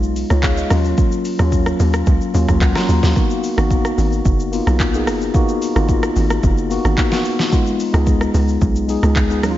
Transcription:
Already playing: B1 G#3 B3 D#4 F4
0.03 shaker
0.16 open hi-hat, shaker
0.30 C#2 F4 C#5, cross-stick, shaker
0.43 G#4 F5, kick, clap, shaker
0.57 D#5, shaker
0.70 D#2 F#3 A#3 C#4 F4, cross-stick, open hi-hat, shaker
0.85 shaker
0.98 kick, shaker
1.12 shaker
1.25 open hi-hat, shaker
1.38 D#2 F#3 A#3 C#4 F4, cross-stick, shaker
1.52 kick, shaker
1.66 cross-stick, shaker
1.80 D#2, open hi-hat, shaker
1.93 cross-stick, shaker
2.06 C#2, kick, shaker
2.21 shaker
2.33 D#2 F#3 A#3 C#4 F4, open hi-hat, shaker
2.48 D#2, kick, cross-stick, shaker
2.61 C#2 F#5, kick, clap, shaker
2.75 F#3 A#3 C#4 F4 A#5, cross-stick, snare, shaker
2.89 D#2, open hi-hat, shaker
3.03 D#2, snare, shaker
3.15 A#3 B3 D#4 F#4, kick, shaker
3.30 shaker
3.44 open hi-hat, shaker
3.57 G#1 A#3 B3 D#4 F#4, cross-stick, shaker
3.71 kick, shaker
3.85 cross-stick, shaker
3.98 G#1, open hi-hat, shaker
4.12 shaker
4.25 F#1, kick, shaker
4.40 shaker
4.52 A#3 B3 D#4 F4, open hi-hat, shaker
4.67 B1, cross-stick, shaker
4.80 kick, clap, shaker
4.93 A#3 B3 D#4 G#4, shaker
5.07 F#1, cross-stick, open hi-hat, shaker
5.22 shaker
5.34 A#3 B3 D#4 F#4, kick, shaker
5.49 shaker
5.62 open hi-hat, shaker
5.75 G#1 A#3 B3 D#4 F4, cross-stick, shaker
5.89 kick, shaker
6.03 cross-stick, shaker
6.16 G#1, open hi-hat, shaker
6.30 cross-stick, shaker
6.43 F#1, kick, shaker
6.58 shaker
6.70 A#3 B3 D#4 F#4, open hi-hat, shaker
6.85 G#1, cross-stick, shaker
6.98 kick, clap, shaker
7.11 A#3 B3 D#4 F#4, snare, shaker
7.25 open hi-hat, shaker
7.39 snare, shaker
7.51 G#3 B3 D#4 F4, kick, shaker
7.67 shaker
7.80 open hi-hat, shaker
7.92 C#2 G#3 B3 D#4 G#4, cross-stick, shaker
8.07 kick, shaker
8.21 cross-stick, shaker
8.34 C#2, open hi-hat, shaker
8.48 shaker
8.61 B1, kick, shaker
8.76 shaker
8.88 G#3 B3 D#4 G#4, open hi-hat, shaker
9.03 C#2, cross-stick, shaker
9.16 kick, clap, shaker
9.29 G#3 B3 D#4 G#4, shaker
9.42 D#2 F#3 A#3 C#4 D#4, cross-stick, open hi-hat, shaker
9.51 F4

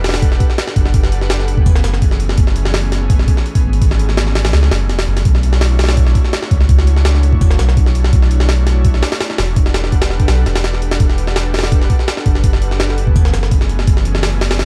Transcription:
Already playing: E1
0.04 D4 G4 A4 B4 F#5, snare, open hi-hat
0.09 snare, open hi-hat
0.14 snare, open hi-hat
0.22 kick, open hi-hat
0.32 snare
0.40 kick, open hi-hat
0.50 snare
0.58 snare, open hi-hat
0.68 D4 G4 A4 B4 F#5, snare
0.76 F#1 D4 G4 A4 B4 F#5, kick, open hi-hat
0.86 snare
0.94 D4 G4 A4 B4 F#5, kick, open hi-hat
1.03 snare
1.12 open hi-hat
1.22 snare
1.30 snare, open hi-hat
1.39 snare
1.48 E3 A3 B3 C#4 G#4, open hi-hat
1.57 G1, kick
1.66 F#1, kick, open hi-hat
1.75 snare
1.84 F#1, snare, open hi-hat
1.94 snare
2.02 kick, open hi-hat
2.11 E3 A3 B3 C#4 G#4, snare
2.20 E3 A3 B3 C#4 G#4, open hi-hat
2.29 snare
2.38 F#1 E3 A3 B3 C#4 G#4, kick, open hi-hat
2.47 snare
2.56 open hi-hat
2.65 snare
2.74 snare, open hi-hat
2.92 E3 A3 B3 C#4 G#4, snare, open hi-hat
3.10 kick, open hi-hat
3.19 snare
3.28 kick, open hi-hat
3.37 snare
3.46 open hi-hat
3.55 E3 A3 B3 C#4 G#4, kick, open hi-hat
3.64 G#1 E3 A3 B3 C#4 G#4
3.73 open hi-hat
3.82 E3 A3 B3 C#4 G#4, kick, open hi-hat
3.91 snare
3.99 open hi-hat
4.09 snare
4.17 snare, open hi-hat
4.27 snare
4.35 E3 A3 B3 C#4 G#4, snare, open hi-hat
4.45 A1, snare, open hi-hat
4.53 C#2, snare, open hi-hat
4.63 snare
4.71 F#1, snare, open hi-hat
4.89 E1, snare, open hi-hat
4.99 snare, open hi-hat
5.08 F#1 E3 A3 B3 C#4 G#4
5.17 snare, open hi-hat
5.25 B1 A3 D4 E4 F#4 C#5, kick, open hi-hat
5.35 snare
5.43 open hi-hat
5.53 snare
5.61 snare, open hi-hat
5.79 A3 D4 E4 F#4 C#5, snare, open hi-hat
5.84 snare, open hi-hat
5.89 snare, open hi-hat
5.97 kick, open hi-hat
6.07 snare
6.15 kick, open hi-hat
6.25 snare
6.33 snare, open hi-hat
6.42 A3 D4 E4 F#4 C#5, snare
6.51 C#2 A3 D4 E4 F#4 C#5, kick, open hi-hat
6.61 snare
6.69 A3 D4 E4 F#4 C#5, kick, open hi-hat
6.79 snare
6.87 open hi-hat
6.97 snare
7.05 snare, open hi-hat
7.15 snare
7.23 A3 D4 E4 F#4 C#5, open hi-hat
7.33 D2, kick
7.41 F#1, kick, open hi-hat
7.51 snare
7.59 B1, snare, open hi-hat
7.69 snare
7.77 kick, open hi-hat
7.86 A3 D4 E4 F#4 C#5, snare
7.95 A3 D4 E4 F#4 C#5, open hi-hat
8.04 snare
8.13 B1 A3 D4 E4 F#4 C#5, kick, open hi-hat
8.22 snare
8.31 open hi-hat
8.40 snare
8.49 snare, open hi-hat
8.67 A3 D4 E4 F#4 C#5, snare, open hi-hat
8.85 kick, open hi-hat
8.94 snare
9.03 snare, open hi-hat
9.12 snare, open hi-hat
9.21 snare, open hi-hat
9.30 A3 D4 E4 F#4 C#5, snare
9.38 E1 A3 D4 E4 F#4 C#5, snare, open hi-hat
9.56 D4 G4 A4 B4 F#5, kick, open hi-hat
9.66 snare
9.74 snare, open hi-hat
9.84 snare
9.92 kick, open hi-hat
10.02 snare, open hi-hat
10.10 D4 G4 A4 B4 F#5, snare
10.20 G1, kick, open hi-hat
10.28 B1, snare, open hi-hat
10.46 E1, snare, open hi-hat
10.56 snare, open hi-hat
10.64 snare, open hi-hat
10.74 D4 G4 A4 B4 F#5, snare
10.82 D4 G4 A4 B4 F#5, open hi-hat
10.91 snare, open hi-hat
11.00 E1 D4 G4 A4 B4 F#5, kick, open hi-hat
11.09 snare
11.18 open hi-hat
11.27 snare
11.36 snare, open hi-hat
11.54 D4 G4 A4 B4 F#5, snare, open hi-hat
11.59 snare, open hi-hat
11.63 snare, open hi-hat
11.72 kick, open hi-hat
11.81 snare
11.90 kick, open hi-hat
11.99 snare
12.08 snare, open hi-hat
12.17 D4 G4 A4 B4 F#5, snare
12.26 F#1 D4 G4 A4 B4 F#5, kick, open hi-hat
12.35 snare
12.44 D4 G4 A4 B4 F#5, kick, open hi-hat
12.53 snare
12.62 open hi-hat
12.71 snare
12.80 snare, open hi-hat
12.89 snare
12.97 E3 A3 B3 C#4 G#4, open hi-hat
13.07 G1, kick
13.16 F#1, kick, open hi-hat
13.25 snare
13.34 F#1, snare, open hi-hat
13.43 snare
13.51 kick, open hi-hat
13.61 E3 A3 B3 C#4 G#4, snare
13.69 E3 A3 B3 C#4 G#4, open hi-hat
13.79 snare
13.87 F#1 E3 A3 B3 C#4 G#4, kick, open hi-hat
13.97 snare
14.05 open hi-hat
14.15 snare
14.23 snare, open hi-hat
14.41 E3 A3 B3 C#4 G#4, snare, open hi-hat
14.51 snare, open hi-hat
14.59 snare, open hi-hat

